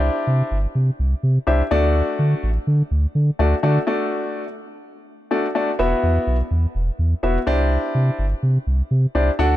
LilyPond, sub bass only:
\new Staff \with { instrumentName = "Sub bass" } { \clef bass \time 4/4 \key c \lydian \tempo 4 = 125 c,8 c8 g,,8 c8 c,8 c8 c,8 d,8~ | d,8 d8 a,,8 d8 d,8 d8 d,8 d8 | r1 | e,,8 e,8 b,,8 e,8 e,,8 e,8 e,,8 c,8~ |
c,8 c8 g,,8 c8 c,8 c8 c,8 d,8 | }